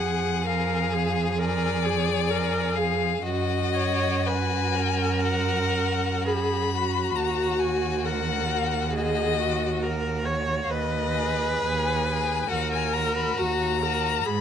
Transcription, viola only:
Already playing: G#4
0.46 A#4
0.94 G#4
1.39 A#4
1.85 G#4
2.31 A#4
2.77 G#4
3.23 F#4
3.74 C#5
4.26 B4
4.76 A#4
6.26 G#4
6.74 F#4
8.06 A#4
8.93 G#4
9.39 F#4
9.83 A#4
10.25 C#5
10.70 B4
12.50 A#4
13.38 F#4
13.83 A#4
14.26 G#4

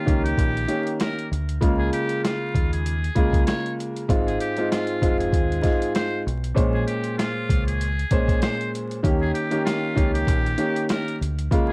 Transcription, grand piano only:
0.06 D#3 A#3 C#4 G4
0.68 D#3 A#3 C#4 G4
1.61 C#3 G#3 A#3 F4
3.15 C#3 G#3 A#3 F4
4.08 G#2 G#3 C4 F4
4.57 G#2 G#3 C4 F4
5.02 G#2 G#3 C4 F4
5.62 G#2 G#3 C4 F4
6.54 A#2 G#3 C#4 C5
8.11 A#2 G#3 C#4 C5
9.03 D#3 A#3 C#4 G4
9.51 D#3 A#3 C#4 G4
9.95 D#3 A#3 C#4 G4
10.58 D#3 A#3 C#4 G4
11.51 C#3 G#3 A#3 F4

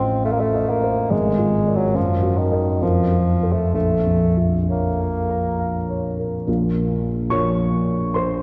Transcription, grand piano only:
Already playing: A1 A2 F4 D#5 F5 C6
0.26 F5
0.55 D#5
0.84 C5
1.11 G#1
1.38 F4
1.66 A#4 D5
1.94 F#2
2.22 F#4
2.52 A#4 D#5
2.81 F2
3.11 F4
3.43 A4 C5
3.74 A#1
4.05 F2
4.37 F4
4.69 C#5
5.00 F5
5.30 A#5
5.59 F5
5.89 C#5
6.19 A#4
6.47 A#1 A#3 F4 A#4
7.30 A#1 A#3 F4 A#4 C#5 C#6
8.14 C5 C6

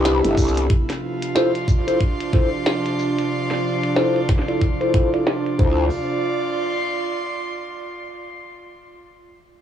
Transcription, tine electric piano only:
Already playing: D4 E4 G4 B4
0.24 D4 E4 G4 A4
1.35 E4 F4 A4 C5
1.88 E4 F4 A4 C5
2.33 E4 F4 A4 C5
3.96 E4 F4 A4 C5
4.48 E4 F4 A4 D5
4.81 E4 F4 A4 C5
4.94 E4 F4 A4 C5
5.13 E4 F4 A4 D5
5.59 E4 F4 A4 C5

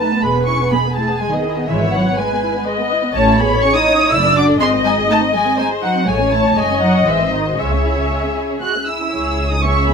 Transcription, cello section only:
0.00 A3
0.23 B3
0.47 C#4
0.71 B3
0.96 A3
1.20 G#3
1.32 D#3
1.68 E3
1.93 F#3
2.17 G#3
3.14 A3
3.38 B3
3.62 C#4
3.74 D#4
4.10 E4
4.35 D4
4.59 C4
4.84 G#3
5.08 A3
5.33 G#3
5.57 G#3
5.82 F#3
6.06 G#3
6.31 A3
6.56 G#3
6.81 F#3
7.06 E3
7.32 D#3
7.58 C#3
8.62 F#4
8.87 E4
9.50 D#4
9.63 C#4
9.87 B3

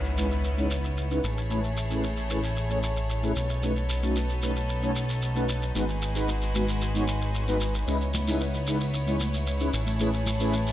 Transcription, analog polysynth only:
0.17 G#3 C#4 D#4 E4 B4
0.57 G#3 C#4 D#4 E4 C#5
1.10 G#3 C#4 D#4 E4 B4
1.49 A3 C#4 E4 G#4 B4
1.89 A3 C#4 E4 G#4 B4
2.29 A3 C#4 E4 G#4 B4
2.69 A3 C#4 E4 G#4 C#5
3.22 A3 C#4 E4 G#4 B4
3.62 A3 C#4 D#4 F#4 B4
4.02 A3 C#4 D#4 F#4 B4
4.42 A3 C#4 D#4 F#4 B4
4.82 A3 C#4 D#4 F#4 C#5
5.35 A3 C#4 D#4 F#4 B4
5.74 G#3 B3 D#4 F#4 B4
6.14 G#3 B3 D#4 F#4 B4
6.54 G#3 B3 D#4 F#4 B4
6.94 G#3 B3 D#4 F#4 C#5
7.47 G#3 B3 D#4 F#4 B4
7.87 G#3 C#4 D#4 E4 B4
8.27 G#3 C#4 D#4 E4 B4
8.67 G#3 C#4 D#4 E4 B4
9.06 G#3 C#4 D#4 E4 C#5
9.60 G#3 C#4 D#4 E4 B4
9.99 A3 C#4 E4 G#4 B4
10.39 A3 C#4 E4 G#4 B4

